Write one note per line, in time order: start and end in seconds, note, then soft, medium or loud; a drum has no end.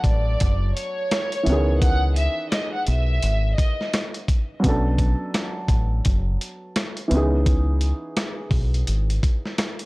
0.00 1.40 F#3 medium
0.00 1.42 A3 medium
0.00 1.41 B3 medium
0.00 1.43 D4 medium
0.00 1.44 A4 medium
0.00 kick medium
0.04 0.35 A1 medium
0.04 0.72 D5 loud
0.04 closed hi-hat medium
0.40 0.72 F#1 loud
0.40 kick medium
0.40 closed hi-hat loud
0.74 1.77 C#5 loud
0.74 closed hi-hat medium
1.11 cross-stick medium
1.11 snare loud
1.11 closed hi-hat loud
1.32 closed hi-hat medium
1.43 2.27 C#2 loud
1.43 4.23 E3 medium
1.43 4.24 B3 medium
1.43 closed hi-hat medium
1.48 4.26 D#3 medium
1.48 4.25 C#4 medium
1.52 4.27 G#4 medium
1.81 2.13 F#5 loud
1.81 kick loud
1.81 closed hi-hat loud
2.16 2.48 E5 medium
2.16 closed hi-hat medium
2.51 2.71 D#5 medium
2.51 cross-stick medium
2.51 snare loud
2.51 closed hi-hat loud
2.73 2.85 F#5 medium
2.87 3.18 B1 loud
2.87 3.55 E5 medium
2.87 closed hi-hat medium
3.23 3.54 G#1 loud
3.23 closed hi-hat loud
3.56 3.89 D#5 medium
3.56 kick loud
3.56 closed hi-hat medium
3.81 snare soft
3.94 cross-stick medium
3.94 snare loud
3.94 closed hi-hat loud
4.14 closed hi-hat medium
4.28 kick loud
4.28 closed hi-hat medium
4.60 7.05 F#3 medium
4.60 7.06 B3 medium
4.64 5.14 B1 loud
4.64 7.07 C#4 medium
4.64 7.08 D4 medium
4.64 kick loud
4.64 closed hi-hat loud
4.68 7.09 A4 medium
4.98 kick loud
4.98 closed hi-hat medium
5.34 cross-stick medium
5.34 snare loud
5.34 closed hi-hat loud
5.68 6.00 A1 loud
5.68 kick loud
5.68 closed hi-hat medium
6.05 6.36 F#1 loud
6.05 kick medium
6.05 closed hi-hat loud
6.41 closed hi-hat medium
6.76 cross-stick medium
6.76 snare loud
6.76 closed hi-hat loud
6.97 closed hi-hat medium
7.08 7.92 C#2 loud
7.08 9.85 E3 medium
7.08 9.85 B3 medium
7.08 closed hi-hat medium
7.12 9.85 C#4 medium
7.12 9.85 D#4 medium
7.17 9.85 G#4 medium
7.46 kick loud
7.46 closed hi-hat loud
7.81 closed hi-hat medium
8.17 cross-stick medium
8.17 snare loud
8.17 closed hi-hat loud
8.51 8.82 B1 loud
8.51 kick loud
8.51 open hi-hat medium
8.74 closed hi-hat medium
8.87 9.18 G#1 loud
8.87 closed hi-hat loud
9.10 closed hi-hat medium
9.23 kick loud
9.23 closed hi-hat medium
9.46 snare soft
9.58 cross-stick medium
9.58 snare loud
9.58 closed hi-hat loud
9.79 closed hi-hat medium